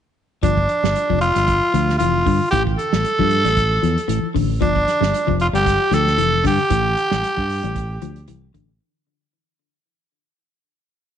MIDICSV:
0, 0, Header, 1, 6, 480
1, 0, Start_track
1, 0, Tempo, 524017
1, 391, Time_signature, 4, 2, 24, 8
1, 10233, End_track
2, 0, Start_track
2, 0, Title_t, "Tenor saxophone"
2, 0, Program_c, 0, 66
2, 399, Note_on_c, 0, 62, 86
2, 1078, Note_off_c, 0, 62, 0
2, 1108, Note_on_c, 0, 65, 100
2, 1792, Note_off_c, 0, 65, 0
2, 1815, Note_on_c, 0, 65, 85
2, 2268, Note_off_c, 0, 65, 0
2, 2297, Note_on_c, 0, 67, 97
2, 2407, Note_off_c, 0, 67, 0
2, 2546, Note_on_c, 0, 69, 106
2, 3948, Note_off_c, 0, 69, 0
2, 4231, Note_on_c, 0, 62, 89
2, 4911, Note_off_c, 0, 62, 0
2, 4955, Note_on_c, 0, 65, 93
2, 5012, Note_off_c, 0, 65, 0
2, 5084, Note_on_c, 0, 67, 102
2, 5445, Note_on_c, 0, 69, 101
2, 5459, Note_off_c, 0, 67, 0
2, 5915, Note_off_c, 0, 69, 0
2, 5926, Note_on_c, 0, 67, 97
2, 7562, Note_off_c, 0, 67, 0
2, 10233, End_track
3, 0, Start_track
3, 0, Title_t, "Clean electric guitar"
3, 0, Program_c, 1, 27
3, 392, Note_on_c, 1, 53, 82
3, 557, Note_off_c, 1, 53, 0
3, 766, Note_on_c, 1, 55, 65
3, 930, Note_off_c, 1, 55, 0
3, 1005, Note_on_c, 1, 53, 70
3, 1170, Note_off_c, 1, 53, 0
3, 1241, Note_on_c, 1, 55, 62
3, 1407, Note_off_c, 1, 55, 0
3, 1593, Note_on_c, 1, 53, 75
3, 1757, Note_off_c, 1, 53, 0
3, 1836, Note_on_c, 1, 52, 75
3, 1999, Note_off_c, 1, 52, 0
3, 2070, Note_on_c, 1, 50, 70
3, 2235, Note_off_c, 1, 50, 0
3, 2313, Note_on_c, 1, 52, 89
3, 2477, Note_off_c, 1, 52, 0
3, 2686, Note_on_c, 1, 55, 65
3, 2849, Note_off_c, 1, 55, 0
3, 2922, Note_on_c, 1, 53, 77
3, 3087, Note_off_c, 1, 53, 0
3, 3160, Note_on_c, 1, 55, 69
3, 3325, Note_off_c, 1, 55, 0
3, 3504, Note_on_c, 1, 53, 67
3, 3670, Note_off_c, 1, 53, 0
3, 3738, Note_on_c, 1, 52, 73
3, 3906, Note_off_c, 1, 52, 0
3, 3980, Note_on_c, 1, 50, 77
3, 4147, Note_off_c, 1, 50, 0
3, 4221, Note_on_c, 1, 53, 87
3, 4388, Note_off_c, 1, 53, 0
3, 4586, Note_on_c, 1, 55, 61
3, 4755, Note_off_c, 1, 55, 0
3, 4830, Note_on_c, 1, 53, 74
3, 4998, Note_off_c, 1, 53, 0
3, 5071, Note_on_c, 1, 55, 68
3, 5239, Note_off_c, 1, 55, 0
3, 5416, Note_on_c, 1, 53, 72
3, 5585, Note_off_c, 1, 53, 0
3, 5659, Note_on_c, 1, 52, 76
3, 5827, Note_off_c, 1, 52, 0
3, 5898, Note_on_c, 1, 50, 76
3, 6066, Note_off_c, 1, 50, 0
3, 6141, Note_on_c, 1, 52, 80
3, 6308, Note_off_c, 1, 52, 0
3, 6515, Note_on_c, 1, 55, 67
3, 6681, Note_off_c, 1, 55, 0
3, 6994, Note_on_c, 1, 55, 66
3, 7162, Note_off_c, 1, 55, 0
3, 7346, Note_on_c, 1, 53, 71
3, 7512, Note_off_c, 1, 53, 0
3, 7584, Note_on_c, 1, 52, 70
3, 7751, Note_off_c, 1, 52, 0
3, 7824, Note_on_c, 1, 50, 74
3, 7992, Note_off_c, 1, 50, 0
3, 10233, End_track
4, 0, Start_track
4, 0, Title_t, "Fingered electric bass"
4, 0, Program_c, 2, 33
4, 395, Note_on_c, 2, 31, 103
4, 602, Note_off_c, 2, 31, 0
4, 762, Note_on_c, 2, 31, 81
4, 857, Note_off_c, 2, 31, 0
4, 1015, Note_on_c, 2, 29, 83
4, 1218, Note_off_c, 2, 29, 0
4, 1247, Note_on_c, 2, 31, 77
4, 1453, Note_off_c, 2, 31, 0
4, 1592, Note_on_c, 2, 38, 83
4, 1800, Note_off_c, 2, 38, 0
4, 1831, Note_on_c, 2, 29, 86
4, 2039, Note_off_c, 2, 29, 0
4, 2076, Note_on_c, 2, 43, 80
4, 2188, Note_off_c, 2, 43, 0
4, 2316, Note_on_c, 2, 33, 100
4, 2522, Note_off_c, 2, 33, 0
4, 2689, Note_on_c, 2, 33, 78
4, 2779, Note_off_c, 2, 33, 0
4, 2930, Note_on_c, 2, 43, 86
4, 3134, Note_off_c, 2, 43, 0
4, 3153, Note_on_c, 2, 33, 88
4, 3458, Note_off_c, 2, 33, 0
4, 3509, Note_on_c, 2, 40, 86
4, 3623, Note_off_c, 2, 40, 0
4, 3741, Note_on_c, 2, 33, 83
4, 3858, Note_off_c, 2, 33, 0
4, 3991, Note_on_c, 2, 33, 83
4, 4231, Note_off_c, 2, 33, 0
4, 4231, Note_on_c, 2, 31, 101
4, 4438, Note_off_c, 2, 31, 0
4, 4591, Note_on_c, 2, 31, 88
4, 4688, Note_off_c, 2, 31, 0
4, 4843, Note_on_c, 2, 29, 87
4, 5049, Note_off_c, 2, 29, 0
4, 5067, Note_on_c, 2, 31, 83
4, 5280, Note_off_c, 2, 31, 0
4, 5418, Note_on_c, 2, 38, 97
4, 5630, Note_off_c, 2, 38, 0
4, 5655, Note_on_c, 2, 29, 88
4, 5868, Note_off_c, 2, 29, 0
4, 5908, Note_on_c, 2, 43, 74
4, 6022, Note_off_c, 2, 43, 0
4, 6145, Note_on_c, 2, 33, 98
4, 6354, Note_off_c, 2, 33, 0
4, 6522, Note_on_c, 2, 33, 82
4, 6615, Note_off_c, 2, 33, 0
4, 6761, Note_on_c, 2, 43, 78
4, 6969, Note_off_c, 2, 43, 0
4, 6998, Note_on_c, 2, 33, 89
4, 7302, Note_off_c, 2, 33, 0
4, 7344, Note_on_c, 2, 38, 76
4, 7562, Note_off_c, 2, 38, 0
4, 7591, Note_on_c, 2, 36, 81
4, 7806, Note_off_c, 2, 36, 0
4, 7832, Note_on_c, 2, 33, 68
4, 8047, Note_off_c, 2, 33, 0
4, 10233, End_track
5, 0, Start_track
5, 0, Title_t, "Muted clean electric guitar strokes"
5, 6750, Note_on_c, 9, 29, 65
5, 6842, Note_off_c, 9, 29, 0
5, 10233, End_track
6, 0, Start_track
6, 0, Title_t, "Drums"
6, 395, Note_on_c, 9, 36, 93
6, 395, Note_on_c, 9, 42, 68
6, 487, Note_off_c, 9, 36, 0
6, 487, Note_off_c, 9, 42, 0
6, 527, Note_on_c, 9, 36, 67
6, 618, Note_off_c, 9, 36, 0
6, 631, Note_on_c, 9, 42, 46
6, 723, Note_off_c, 9, 42, 0
6, 770, Note_on_c, 9, 38, 70
6, 861, Note_off_c, 9, 38, 0
6, 876, Note_on_c, 9, 42, 71
6, 967, Note_off_c, 9, 42, 0
6, 1009, Note_on_c, 9, 36, 51
6, 1100, Note_off_c, 9, 36, 0
6, 1111, Note_on_c, 9, 42, 50
6, 1202, Note_off_c, 9, 42, 0
6, 1244, Note_on_c, 9, 42, 58
6, 1335, Note_off_c, 9, 42, 0
6, 1353, Note_on_c, 9, 42, 62
6, 1355, Note_on_c, 9, 36, 67
6, 1444, Note_off_c, 9, 42, 0
6, 1447, Note_off_c, 9, 36, 0
6, 1597, Note_on_c, 9, 42, 55
6, 1689, Note_off_c, 9, 42, 0
6, 1734, Note_on_c, 9, 38, 26
6, 1826, Note_off_c, 9, 38, 0
6, 1829, Note_on_c, 9, 42, 68
6, 1921, Note_off_c, 9, 42, 0
6, 2075, Note_on_c, 9, 36, 67
6, 2077, Note_on_c, 9, 46, 63
6, 2166, Note_off_c, 9, 36, 0
6, 2168, Note_off_c, 9, 46, 0
6, 2314, Note_on_c, 9, 36, 92
6, 2314, Note_on_c, 9, 42, 69
6, 2406, Note_off_c, 9, 36, 0
6, 2406, Note_off_c, 9, 42, 0
6, 2444, Note_on_c, 9, 36, 64
6, 2536, Note_off_c, 9, 36, 0
6, 2555, Note_on_c, 9, 42, 49
6, 2647, Note_off_c, 9, 42, 0
6, 2681, Note_on_c, 9, 38, 65
6, 2773, Note_off_c, 9, 38, 0
6, 2790, Note_on_c, 9, 42, 65
6, 2881, Note_off_c, 9, 42, 0
6, 2924, Note_on_c, 9, 36, 55
6, 3015, Note_off_c, 9, 36, 0
6, 3027, Note_on_c, 9, 42, 48
6, 3119, Note_off_c, 9, 42, 0
6, 3162, Note_on_c, 9, 42, 46
6, 3164, Note_on_c, 9, 38, 29
6, 3253, Note_off_c, 9, 42, 0
6, 3255, Note_off_c, 9, 38, 0
6, 3268, Note_on_c, 9, 42, 60
6, 3271, Note_on_c, 9, 36, 66
6, 3360, Note_off_c, 9, 42, 0
6, 3362, Note_off_c, 9, 36, 0
6, 3512, Note_on_c, 9, 42, 49
6, 3604, Note_off_c, 9, 42, 0
6, 3643, Note_on_c, 9, 42, 48
6, 3735, Note_off_c, 9, 42, 0
6, 3749, Note_on_c, 9, 42, 62
6, 3841, Note_off_c, 9, 42, 0
6, 3991, Note_on_c, 9, 36, 61
6, 3993, Note_on_c, 9, 46, 61
6, 4083, Note_off_c, 9, 36, 0
6, 4085, Note_off_c, 9, 46, 0
6, 4231, Note_on_c, 9, 36, 93
6, 4231, Note_on_c, 9, 42, 69
6, 4322, Note_off_c, 9, 36, 0
6, 4323, Note_off_c, 9, 42, 0
6, 4361, Note_on_c, 9, 36, 67
6, 4453, Note_off_c, 9, 36, 0
6, 4469, Note_on_c, 9, 42, 45
6, 4471, Note_on_c, 9, 38, 25
6, 4560, Note_off_c, 9, 42, 0
6, 4562, Note_off_c, 9, 38, 0
6, 4604, Note_on_c, 9, 38, 72
6, 4695, Note_off_c, 9, 38, 0
6, 4712, Note_on_c, 9, 42, 71
6, 4804, Note_off_c, 9, 42, 0
6, 4838, Note_on_c, 9, 36, 54
6, 4930, Note_off_c, 9, 36, 0
6, 4944, Note_on_c, 9, 42, 49
6, 5036, Note_off_c, 9, 42, 0
6, 5084, Note_on_c, 9, 42, 52
6, 5176, Note_off_c, 9, 42, 0
6, 5188, Note_on_c, 9, 36, 65
6, 5190, Note_on_c, 9, 42, 69
6, 5191, Note_on_c, 9, 38, 27
6, 5280, Note_off_c, 9, 36, 0
6, 5281, Note_off_c, 9, 42, 0
6, 5283, Note_off_c, 9, 38, 0
6, 5427, Note_on_c, 9, 42, 56
6, 5429, Note_on_c, 9, 38, 26
6, 5518, Note_off_c, 9, 42, 0
6, 5520, Note_off_c, 9, 38, 0
6, 5560, Note_on_c, 9, 38, 27
6, 5652, Note_off_c, 9, 38, 0
6, 5663, Note_on_c, 9, 42, 65
6, 5755, Note_off_c, 9, 42, 0
6, 5905, Note_on_c, 9, 46, 60
6, 5906, Note_on_c, 9, 36, 67
6, 5907, Note_on_c, 9, 38, 29
6, 5996, Note_off_c, 9, 46, 0
6, 5997, Note_off_c, 9, 36, 0
6, 5998, Note_off_c, 9, 38, 0
6, 6142, Note_on_c, 9, 42, 72
6, 6145, Note_on_c, 9, 36, 83
6, 6233, Note_off_c, 9, 42, 0
6, 6236, Note_off_c, 9, 36, 0
6, 6387, Note_on_c, 9, 42, 51
6, 6479, Note_off_c, 9, 42, 0
6, 6517, Note_on_c, 9, 38, 73
6, 6608, Note_off_c, 9, 38, 0
6, 6632, Note_on_c, 9, 42, 69
6, 6723, Note_off_c, 9, 42, 0
6, 6757, Note_on_c, 9, 36, 54
6, 6849, Note_off_c, 9, 36, 0
6, 6865, Note_on_c, 9, 46, 59
6, 6957, Note_off_c, 9, 46, 0
6, 7002, Note_on_c, 9, 42, 51
6, 7094, Note_off_c, 9, 42, 0
6, 7106, Note_on_c, 9, 36, 66
6, 7107, Note_on_c, 9, 42, 66
6, 7198, Note_off_c, 9, 36, 0
6, 7199, Note_off_c, 9, 42, 0
6, 7344, Note_on_c, 9, 42, 52
6, 7435, Note_off_c, 9, 42, 0
6, 7474, Note_on_c, 9, 42, 45
6, 7566, Note_off_c, 9, 42, 0
6, 7581, Note_on_c, 9, 42, 65
6, 7673, Note_off_c, 9, 42, 0
6, 7827, Note_on_c, 9, 42, 49
6, 7828, Note_on_c, 9, 36, 65
6, 7918, Note_off_c, 9, 42, 0
6, 7920, Note_off_c, 9, 36, 0
6, 10233, End_track
0, 0, End_of_file